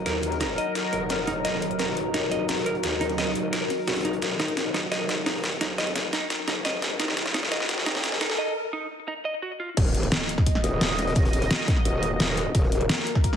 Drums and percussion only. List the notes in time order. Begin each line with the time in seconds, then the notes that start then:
0.06 snare, closed hi-hat
0.23 closed hi-hat
0.32 snare, closed hi-hat
0.40 snare, closed hi-hat
0.58 closed hi-hat
0.75 snare, closed hi-hat
0.93 closed hi-hat
1.09 snare, closed hi-hat
1.27 snare, closed hi-hat
1.45 snare, closed hi-hat
1.53 snare
1.62 closed hi-hat
1.71 closed hi-hat
1.79 snare, closed hi-hat
1.88 snare
1.97 closed hi-hat
2.14 snare, closed hi-hat
2.31 snare, closed hi-hat
2.48 snare, closed hi-hat, open hi-hat
2.57 snare
2.66 closed hi-hat
2.75 closed hi-hat
2.83 snare, closed hi-hat
3.01 closed hi-hat
3.09 snare, closed hi-hat
3.18 snare, closed hi-hat
3.35 closed hi-hat
3.53 snare, closed hi-hat
3.70 snare, closed hi-hat, open hi-hat
3.80 snare
3.87 snare, closed hi-hat
3.92 snare, closed hi-hat
3.96 snare, closed hi-hat
4.01 snare, closed hi-hat
4.05 snare, closed hi-hat
4.13 closed hi-hat
4.22 snare, closed hi-hat
4.31 snare
4.39 snare, closed hi-hat
4.48 closed hi-hat
4.57 snare, closed hi-hat
4.66 snare
4.74 snare, closed hi-hat
4.92 snare, closed hi-hat
5.09 snare, closed hi-hat
5.26 snare, closed hi-hat, open hi-hat
5.35 snare
5.44 snare, closed hi-hat
5.52 closed hi-hat
5.61 snare, closed hi-hat
5.78 snare, closed hi-hat
5.87 snare, closed hi-hat
5.95 snare, closed hi-hat
6.13 snare, closed hi-hat
6.30 snare, closed hi-hat
6.48 snare, closed hi-hat
6.65 snare, closed hi-hat
6.82 snare, closed hi-hat
7.00 snare, closed hi-hat
7.08 snare
7.17 snare, closed hi-hat
7.26 snare, closed hi-hat
7.34 snare, closed hi-hat
7.43 snare
7.51 snare, closed hi-hat
7.60 snare
7.69 snare, closed hi-hat
7.78 snare
7.86 snare, closed hi-hat
7.95 snare, closed hi-hat
8.03 snare, closed hi-hat
8.12 snare
8.21 snare, closed hi-hat
8.30 snare
9.77 kick, closed hi-hat, crash
9.86 snare
9.94 closed hi-hat
10.03 closed hi-hat
10.12 snare, closed hi-hat
10.21 snare
10.29 closed hi-hat
10.38 kick, snare
10.46 kick, closed hi-hat
10.55 snare
10.64 snare, closed hi-hat
10.81 snare, closed hi-hat, open hi-hat
10.90 snare
10.99 snare, closed hi-hat
11.07 snare, closed hi-hat
11.15 kick, snare, closed hi-hat
11.25 snare, closed hi-hat
11.33 snare, closed hi-hat
11.42 snare, closed hi-hat
11.51 snare, closed hi-hat
11.68 kick, snare, closed hi-hat
11.77 snare
11.85 closed hi-hat
12.03 closed hi-hat
12.20 snare, closed hi-hat
12.37 snare, closed hi-hat
12.55 kick, closed hi-hat
12.63 snare
12.72 closed hi-hat
12.81 closed hi-hat
12.89 snare, closed hi-hat
12.98 snare
13.07 closed hi-hat
13.15 kick, snare
13.24 kick, closed hi-hat
13.33 snare